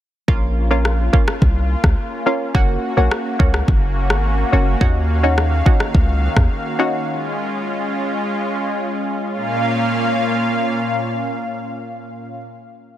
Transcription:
0.28 A#1 A#3 C#4 F4, kick
0.71 A#3 C#4 F4
0.85 cross-stick
1.13 A#3 C#4 F4, kick
1.28 cross-stick
1.42 C2, kick
1.84 C#2, kick, cross-stick
2.26 A#3 C#4 F4
2.54 F#1 A#3 C#4 F#4, kick
2.97 A#1 A#3 C#4 F#4
3.11 cross-stick
3.39 C#2 A#3 C#4 F#4, kick
3.54 cross-stick
3.68 F#1, kick
4.10 G#1, cross-stick
4.52 F#1 A#3 C#4 F#4
4.81 D#2 D#3 C#4 D#4 F#4 F5, kick
5.23 C#4 D#4 F#4
5.38 cross-stick
5.66 C#4 D#4 F#4, kick
5.80 cross-stick
5.95 C#2, kick
6.37 D#2, kick, cross-stick
6.79 C#4 D#4 F#4
7.07 G#3 C#4 F4
9.34 A#2 A#3 C#4 F4 F5

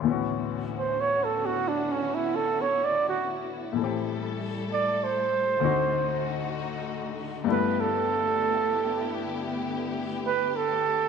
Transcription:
Already playing: E5
0.00 D2 A2 D3 B3 C#4 E4 F#4
0.05 E3 B3
0.10 C#4 F#4
0.79 C5
1.01 C#5
1.24 A4
1.46 F#4
1.68 D4
1.92 C#4
2.15 E4
2.36 A4
2.62 C#5
2.84 D5
3.09 F#4
3.73 A2 E3 G3 A3 A4
3.78 A3 C4
3.84 G4
4.73 D5
5.04 C5
5.58 D2 D3 D#4 F#4
5.63 C4 D#4 F#4
7.44 G2 G3 A3 B3 E4 G4
7.49 B3 E4 B4
7.80 A4
10.27 B4
10.56 A4

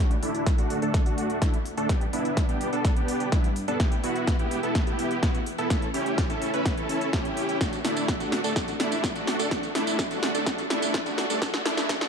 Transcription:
0.00 D2 A3 D4 F#4
0.11 closed hi-hat
0.23 D2 A3 D4 E4, open hi-hat
0.35 closed hi-hat
0.46 kick, snare, closed hi-hat
0.58 D2 A3 D4 F#4, closed hi-hat
0.70 open hi-hat
0.82 D2 A3 D4 A4, closed hi-hat
0.94 kick, snare, closed hi-hat
1.06 D2 A3 D4 F#4, closed hi-hat
1.18 open hi-hat
1.30 closed hi-hat
1.42 D2 A3 D4 E4, kick, snare, closed hi-hat
1.54 closed hi-hat
1.66 open hi-hat
1.77 D2 A3 D4 A4, closed hi-hat
1.89 G1 B3 D4 G4, kick, snare, closed hi-hat
2.01 closed hi-hat
2.13 G1 B3 D4 E4, open hi-hat
2.25 closed hi-hat
2.37 kick, snare, closed hi-hat
2.49 G1 B3 D4 G4, closed hi-hat
2.61 open hi-hat
2.73 G1 B3 D4 A4, closed hi-hat
2.85 kick, snare, closed hi-hat
2.96 G1 B3 D4 G4, closed hi-hat
3.08 open hi-hat
3.20 closed hi-hat
3.32 G2 B3 D4 E4, kick, snare, closed hi-hat
3.44 closed hi-hat
3.56 open hi-hat
3.68 G2 B3 D4 A4, closed hi-hat
3.80 E1 B3 G4, kick, snare, closed hi-hat
3.92 closed hi-hat
4.04 E1 B3 E4 F#4, open hi-hat
4.16 closed hi-hat
4.27 kick, snare, closed hi-hat
4.39 E1 B3 E4 G4, closed hi-hat
4.51 open hi-hat
4.63 E1 B3 E4 A4, closed hi-hat
4.75 kick, snare, closed hi-hat
4.87 E1 B3 E4 G4, closed hi-hat
4.99 open hi-hat
5.11 closed hi-hat
5.23 E2 B3 E4 F#4, kick, snare, closed hi-hat
5.35 closed hi-hat
5.46 open hi-hat
5.58 E1 B3 E4 A4, closed hi-hat
5.70 A1, kick, snare, closed hi-hat
5.82 closed hi-hat
5.94 A1 C#4 E4 G4, open hi-hat
6.06 closed hi-hat
6.18 kick, snare, closed hi-hat
6.30 A1 C#4 E4 A4, closed hi-hat
6.42 open hi-hat
6.54 A1 C#4 E4 B4, closed hi-hat
6.66 kick, snare, closed hi-hat
6.77 A1 C#4 E4 A4, closed hi-hat
6.89 open hi-hat
7.01 closed hi-hat
7.13 A1 E4 G4, kick, snare, closed hi-hat
7.25 closed hi-hat
7.37 open hi-hat
7.49 closed hi-hat
7.61 D2 A3, kick, snare, closed hi-hat, tambourine
7.73 closed hi-hat, tambourine
7.85 D2 A3 D4 E4, snare, open hi-hat
7.96 closed hi-hat, tambourine
8.08 kick, snare, closed hi-hat, tambourine
8.20 D2 A3 D4 F#4, closed hi-hat, tambourine
8.32 snare, open hi-hat
8.44 D2 A3 D4 A4, closed hi-hat, tambourine
8.56 D2 A3, kick, snare, closed hi-hat, tambourine
8.68 closed hi-hat, tambourine
8.80 D2 A3 D4 E4, snare, open hi-hat
8.92 closed hi-hat, tambourine
9.04 kick, snare, closed hi-hat, tambourine
9.16 D2 A3 D4 F#4, closed hi-hat, tambourine
9.27 snare, open hi-hat
9.39 D2 A3 D4 A4, closed hi-hat, tambourine
9.51 G1 A3 D4 F#4, kick, snare, closed hi-hat, tambourine
9.63 closed hi-hat, tambourine
9.75 G1 A3 D4 E4, snare, open hi-hat
9.87 closed hi-hat, tambourine
9.99 kick, snare, closed hi-hat, tambourine
10.11 G1 A3 D4 F#4, closed hi-hat, tambourine
10.23 snare, open hi-hat
10.35 G1 A3 D4 A4, closed hi-hat, tambourine
10.46 G1 A3 F#4, kick, snare, closed hi-hat, tambourine
10.58 closed hi-hat, tambourine
10.70 G1 A3 D4 E4, snare, open hi-hat
10.82 closed hi-hat, tambourine
10.94 kick, snare, closed hi-hat, tambourine
11.06 G1 A3 D4 F#4, closed hi-hat, tambourine
11.18 snare, open hi-hat
11.30 G2 A3 D4 A4, closed hi-hat, tambourine
11.42 E1 F#4, kick, snare, closed hi-hat, tambourine
11.54 snare, closed hi-hat, tambourine
11.66 E1 A3 D4 E4, snare, open hi-hat
11.77 snare, closed hi-hat, tambourine
11.89 E1 A3 D4 F#4, kick, snare, closed hi-hat, tambourine
12.01 snare, closed hi-hat, tambourine

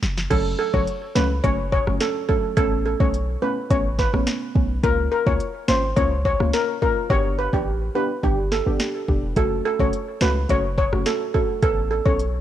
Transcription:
0.03 F#1, snare
0.17 snare
0.30 F#1 F#3 A3 C#4 A4, kick, closed hi-hat, crash
0.59 A4
0.74 F#1 F#3 A3 C#4 C#5, kick
0.87 closed hi-hat
1.15 C#2 F#3 A3 C#4 B4, snare
1.44 F#1 F#3 A3 C#4 C#5, kick, closed hi-hat
1.72 C#5, kick
1.87 F#1 F#3 A3 C#4, cross-stick
2.00 A4, snare, closed hi-hat
2.29 F#3 A3 C#4 A4, kick
2.57 A1 A3 B3 C#4 A4, kick, closed hi-hat
2.86 A4
3.00 B1 A3 B3 C#4 C#5, kick
3.14 closed hi-hat
3.42 A3 B3 C#4 B4
3.70 A1 A3 B3 C#4 C#5, kick, closed hi-hat
3.99 B4, kick, snare
4.13 A1 A3 B3 C#4, cross-stick
4.27 snare, closed hi-hat
4.55 B1 A3 B3 C#4, kick
4.83 C#2 A#3 C#4 F4 A#4, kick, closed hi-hat
5.12 A#4
5.26 C#2 A#3 C#4 F4 C#5, kick
5.40 closed hi-hat
5.68 G#1 A#3 C#4 F4 C5, snare
5.96 C#2 A#3 C#4 F4 C#5, kick, closed hi-hat
6.25 C#5, kick
6.40 C#2 A#3 C#4 F4, cross-stick
6.53 A#4, snare, closed hi-hat
6.82 A#3 C#4 F4 A#4, kick
7.10 G1 B3 D4 G4 C#5, kick
7.39 B4
7.53 A1 B3 D4 G4, kick
7.95 B3 D4 G4 B4
8.23 G1 B3 D4 G4, kick
8.52 A4, snare
8.66 G1 B3 D4 G4
8.80 snare
9.08 E1 B3 D4 G4, kick
9.36 F#1 A3 C#4 F#4 A4, kick, closed hi-hat
9.65 A4
9.79 F#1 A3 C#4 F#4 C#5, kick
9.93 closed hi-hat
10.21 C#2 A3 C#4 F#4 B4, snare
10.49 F#1 A3 C#4 F#4 C#5, kick, closed hi-hat
10.78 C#5, kick
10.92 F#1 A3 C#4 F#4, cross-stick
11.06 A4, snare, closed hi-hat
11.34 A3 C#4 F#4 A4, kick
11.62 A1 B3 C#4 A4, kick, closed hi-hat
11.91 A4
12.06 B1 B3 C#4 A4 C#5, kick
12.19 closed hi-hat

